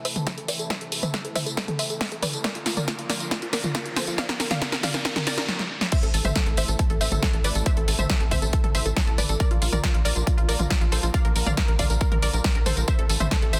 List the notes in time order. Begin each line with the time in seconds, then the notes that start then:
Already playing: C3 E3 A3 E4 A4, riser
0.05 C5 E5, open hi-hat, tambourine
0.16 A4, closed hi-hat, mid tom, tambourine
0.27 A4, kick, snare, closed hi-hat, tambourine
0.38 A4, closed hi-hat
0.48 B4 D5, open hi-hat, tambourine
0.59 A4, closed hi-hat, tambourine
0.70 C5 E5, kick, snare, closed hi-hat, tambourine
0.81 A4, closed hi-hat
0.92 A4, open hi-hat, tambourine
1.03 C5 E5, closed hi-hat, mid tom, tambourine
1.14 A4, kick, snare, closed hi-hat
1.25 A4, closed hi-hat
1.35 C5 E5, kick, open hi-hat, mid tom, tambourine
1.46 A4, closed hi-hat, tambourine
1.57 A4, kick, snare, closed hi-hat, tambourine
1.68 A4, closed hi-hat, mid tom
1.79 C5 E5, open hi-hat, tambourine
1.90 A4, closed hi-hat, tambourine
2.01 A4, kick, snare, open hi-hat, tambourine
2.12 A4, closed hi-hat
2.23 B4 D5, open hi-hat, mid tom, tambourine
2.33 A4, closed hi-hat, tambourine
2.44 D3 F3 A#3 F4 A#4 D5, kick, snare, closed hi-hat
2.55 F4, closed hi-hat
2.66 F4, snare, open hi-hat, tambourine
2.77 A#4 D5, closed hi-hat, mid tom, tambourine
2.88 F4, kick, snare, closed hi-hat, tambourine
2.99 F4, closed hi-hat
3.10 A#4 D5, snare, open hi-hat, tambourine
3.20 F4, closed hi-hat, tambourine
3.31 F4, kick, snare, closed hi-hat, tambourine
3.42 F4, closed hi-hat
3.53 A#4 D5, snare, open hi-hat, tambourine
3.64 F4, closed hi-hat, mid tom, tambourine
3.75 F4, kick, snare, closed hi-hat, tambourine
3.86 F4, closed hi-hat
3.96 A4 C5, snare, open hi-hat, tambourine
4.07 F4, closed hi-hat, tambourine
4.18 D5 F5, kick, snare, closed hi-hat
4.29 A#4, snare, closed hi-hat
4.40 A#4, snare, open hi-hat, tambourine
4.51 D5 F5, snare, closed hi-hat, mid tom, tambourine
4.62 A#4, kick, snare, closed hi-hat, tambourine
4.72 A#4, snare, closed hi-hat
4.83 D5 F5, kick, snare, open hi-hat, mid tom, tambourine
4.94 A#4, snare, closed hi-hat, tambourine
5.05 A#4, kick, snare, closed hi-hat, tambourine
5.16 A#4, snare, closed hi-hat, mid tom
5.27 A#4 D5, snare, open hi-hat, tambourine
5.38 A#4, snare, tambourine
5.49 snare
5.59 snare
5.81 snare
5.92 C3 E3 A3 E4 A4 C5 E5, kick, closed hi-hat, crash, tambourine
6.03 A1 A4, closed hi-hat
6.14 A1 A4, open hi-hat, tambourine
6.25 A1 C5 E5, closed hi-hat, mid tom, tambourine
6.36 A4, kick, snare, closed hi-hat
6.46 A1 A4, closed hi-hat
6.57 A1 C5 E5, open hi-hat, tambourine
6.68 A1 A4, closed hi-hat, tambourine
6.79 A4, kick, closed hi-hat, tambourine
6.90 A1 A4, closed hi-hat
7.01 A1 C5 E5, open hi-hat, tambourine
7.12 A1 A4, closed hi-hat, mid tom, tambourine
7.22 A4, kick, snare, closed hi-hat
7.33 A1 A4, closed hi-hat
7.44 A1 B4 D5, open hi-hat, tambourine
7.55 A1 A4, closed hi-hat, tambourine
7.66 C5 E5, kick, closed hi-hat, tambourine
7.77 A1 A4, closed hi-hat
7.88 A1 A4, open hi-hat, tambourine
7.99 A1 C5 E5, closed hi-hat, mid tom, tambourine
8.10 A4, kick, snare, closed hi-hat, tambourine
8.20 A1 A4, closed hi-hat
8.31 A1 C5 E5, kick, open hi-hat, mid tom, tambourine
8.42 A1 A4, closed hi-hat, tambourine
8.53 A4, kick, closed hi-hat, tambourine
8.64 A1 A4, closed hi-hat, mid tom
8.75 A1 C5 E5, open hi-hat, tambourine
8.86 A1 A4, closed hi-hat, tambourine
8.96 A4, kick, snare, open hi-hat, tambourine
9.07 A1 A4, closed hi-hat
9.18 A1 B4 D5, open hi-hat, mid tom, tambourine
9.29 A1 A4, closed hi-hat, tambourine
9.40 D3 F3 A#3 F4 A#4 D5, kick, closed hi-hat, tambourine
9.51 A#1 F4, closed hi-hat
9.62 A#1 F4, open hi-hat, tambourine
9.73 A#1 A#4 D5, closed hi-hat, mid tom, tambourine
9.83 F4, kick, snare, closed hi-hat, tambourine
9.94 A#1 F4, closed hi-hat
10.05 A#1 A#4 D5, open hi-hat, tambourine
10.16 A#1 F4, closed hi-hat, tambourine
10.27 F4, kick, closed hi-hat, tambourine
10.38 A#1 F4, closed hi-hat
10.49 A#1 A#4 D5, open hi-hat, tambourine
10.59 A#1 F4, closed hi-hat, mid tom, tambourine
10.70 F4, kick, snare, closed hi-hat, tambourine
10.81 A#1 F4, closed hi-hat
10.92 A#1 A4 C5, open hi-hat, tambourine
11.03 A#1 F4, closed hi-hat, tambourine
11.14 D5 F5, kick, closed hi-hat, tambourine
11.25 A#1 A#4, closed hi-hat
11.36 A#1 A#4, open hi-hat, tambourine
11.46 A#1 D5 F5, closed hi-hat, mid tom, tambourine
11.57 A#4, kick, snare, closed hi-hat, tambourine
11.68 A#1 A#4, closed hi-hat
11.79 A#1 D5 F5, kick, open hi-hat, mid tom, tambourine
11.90 A#1 A#4, closed hi-hat, tambourine
12.01 A#4, kick, closed hi-hat, tambourine
12.12 A#1 A#4, closed hi-hat, mid tom
12.22 A#1 A#4 D5, open hi-hat, tambourine
12.33 A#1 A#4, closed hi-hat, tambourine
12.44 A#4, kick, snare, open hi-hat
12.55 A#1 A#4, closed hi-hat
12.66 A#1 A4 C5, open hi-hat, mid tom, tambourine
12.77 A#1 A#4, closed hi-hat, tambourine
12.88 C3 E3 A3 E4 A4 C5 E5, kick, closed hi-hat, tambourine
12.99 A1 A4, closed hi-hat
13.09 A1 A4, open hi-hat, tambourine
13.20 A1 C5 E5, closed hi-hat, mid tom, tambourine
13.31 A4, kick, snare, closed hi-hat, tambourine
13.42 A1 A4, closed hi-hat
13.53 A1 C5 E5, open hi-hat, tambourine